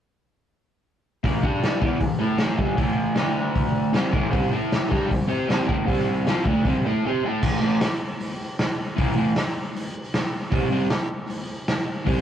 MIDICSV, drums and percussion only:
0, 0, Header, 1, 2, 480
1, 0, Start_track
1, 0, Key_signature, 0, "minor"
1, 0, Tempo, 386847
1, 1521, Time_signature, 4, 2, 24, 8
1, 15151, End_track
2, 0, Start_track
2, 0, Title_t, "Drums"
2, 1538, Note_on_c, 9, 36, 94
2, 1550, Note_on_c, 9, 46, 52
2, 1662, Note_off_c, 9, 36, 0
2, 1674, Note_off_c, 9, 46, 0
2, 1778, Note_on_c, 9, 36, 100
2, 1902, Note_off_c, 9, 36, 0
2, 2027, Note_on_c, 9, 46, 48
2, 2029, Note_on_c, 9, 38, 109
2, 2152, Note_off_c, 9, 46, 0
2, 2153, Note_off_c, 9, 38, 0
2, 2254, Note_on_c, 9, 36, 103
2, 2378, Note_off_c, 9, 36, 0
2, 2485, Note_on_c, 9, 46, 52
2, 2489, Note_on_c, 9, 36, 88
2, 2609, Note_off_c, 9, 46, 0
2, 2613, Note_off_c, 9, 36, 0
2, 2959, Note_on_c, 9, 46, 45
2, 2960, Note_on_c, 9, 38, 101
2, 3083, Note_off_c, 9, 46, 0
2, 3084, Note_off_c, 9, 38, 0
2, 3209, Note_on_c, 9, 36, 99
2, 3333, Note_off_c, 9, 36, 0
2, 3449, Note_on_c, 9, 46, 51
2, 3450, Note_on_c, 9, 36, 101
2, 3573, Note_off_c, 9, 46, 0
2, 3574, Note_off_c, 9, 36, 0
2, 3918, Note_on_c, 9, 46, 53
2, 3919, Note_on_c, 9, 38, 104
2, 4042, Note_off_c, 9, 46, 0
2, 4043, Note_off_c, 9, 38, 0
2, 4412, Note_on_c, 9, 36, 99
2, 4419, Note_on_c, 9, 46, 44
2, 4536, Note_off_c, 9, 36, 0
2, 4543, Note_off_c, 9, 46, 0
2, 4889, Note_on_c, 9, 46, 46
2, 4890, Note_on_c, 9, 38, 95
2, 5013, Note_off_c, 9, 46, 0
2, 5014, Note_off_c, 9, 38, 0
2, 5128, Note_on_c, 9, 36, 101
2, 5253, Note_off_c, 9, 36, 0
2, 5369, Note_on_c, 9, 46, 49
2, 5373, Note_on_c, 9, 36, 100
2, 5493, Note_off_c, 9, 46, 0
2, 5497, Note_off_c, 9, 36, 0
2, 5859, Note_on_c, 9, 46, 50
2, 5860, Note_on_c, 9, 38, 108
2, 5983, Note_off_c, 9, 46, 0
2, 5984, Note_off_c, 9, 38, 0
2, 6099, Note_on_c, 9, 36, 93
2, 6116, Note_on_c, 9, 38, 34
2, 6223, Note_off_c, 9, 36, 0
2, 6240, Note_off_c, 9, 38, 0
2, 6342, Note_on_c, 9, 36, 84
2, 6355, Note_on_c, 9, 46, 50
2, 6466, Note_off_c, 9, 36, 0
2, 6479, Note_off_c, 9, 46, 0
2, 6824, Note_on_c, 9, 46, 54
2, 6825, Note_on_c, 9, 38, 106
2, 6948, Note_off_c, 9, 46, 0
2, 6949, Note_off_c, 9, 38, 0
2, 7058, Note_on_c, 9, 36, 93
2, 7182, Note_off_c, 9, 36, 0
2, 7295, Note_on_c, 9, 36, 99
2, 7297, Note_on_c, 9, 46, 54
2, 7419, Note_off_c, 9, 36, 0
2, 7420, Note_on_c, 9, 38, 31
2, 7421, Note_off_c, 9, 46, 0
2, 7544, Note_off_c, 9, 38, 0
2, 7778, Note_on_c, 9, 46, 51
2, 7780, Note_on_c, 9, 38, 103
2, 7902, Note_off_c, 9, 46, 0
2, 7904, Note_off_c, 9, 38, 0
2, 8010, Note_on_c, 9, 36, 99
2, 8134, Note_off_c, 9, 36, 0
2, 8253, Note_on_c, 9, 36, 96
2, 8261, Note_on_c, 9, 46, 46
2, 8377, Note_off_c, 9, 36, 0
2, 8385, Note_off_c, 9, 46, 0
2, 9214, Note_on_c, 9, 49, 112
2, 9217, Note_on_c, 9, 36, 106
2, 9338, Note_off_c, 9, 49, 0
2, 9341, Note_off_c, 9, 36, 0
2, 9693, Note_on_c, 9, 46, 58
2, 9694, Note_on_c, 9, 38, 115
2, 9817, Note_off_c, 9, 46, 0
2, 9818, Note_off_c, 9, 38, 0
2, 10180, Note_on_c, 9, 46, 60
2, 10304, Note_off_c, 9, 46, 0
2, 10659, Note_on_c, 9, 46, 56
2, 10661, Note_on_c, 9, 38, 108
2, 10784, Note_off_c, 9, 46, 0
2, 10785, Note_off_c, 9, 38, 0
2, 11140, Note_on_c, 9, 46, 56
2, 11147, Note_on_c, 9, 36, 117
2, 11264, Note_off_c, 9, 46, 0
2, 11271, Note_off_c, 9, 36, 0
2, 11616, Note_on_c, 9, 46, 59
2, 11617, Note_on_c, 9, 38, 106
2, 11740, Note_off_c, 9, 46, 0
2, 11741, Note_off_c, 9, 38, 0
2, 12113, Note_on_c, 9, 46, 54
2, 12237, Note_off_c, 9, 46, 0
2, 12581, Note_on_c, 9, 46, 52
2, 12582, Note_on_c, 9, 38, 99
2, 12705, Note_off_c, 9, 46, 0
2, 12706, Note_off_c, 9, 38, 0
2, 13050, Note_on_c, 9, 46, 57
2, 13052, Note_on_c, 9, 36, 118
2, 13174, Note_off_c, 9, 46, 0
2, 13176, Note_off_c, 9, 36, 0
2, 13529, Note_on_c, 9, 46, 57
2, 13530, Note_on_c, 9, 38, 117
2, 13653, Note_off_c, 9, 46, 0
2, 13654, Note_off_c, 9, 38, 0
2, 14020, Note_on_c, 9, 46, 55
2, 14144, Note_off_c, 9, 46, 0
2, 14495, Note_on_c, 9, 46, 56
2, 14497, Note_on_c, 9, 38, 102
2, 14619, Note_off_c, 9, 46, 0
2, 14621, Note_off_c, 9, 38, 0
2, 14976, Note_on_c, 9, 36, 113
2, 14986, Note_on_c, 9, 46, 63
2, 15100, Note_off_c, 9, 36, 0
2, 15110, Note_off_c, 9, 46, 0
2, 15151, End_track
0, 0, End_of_file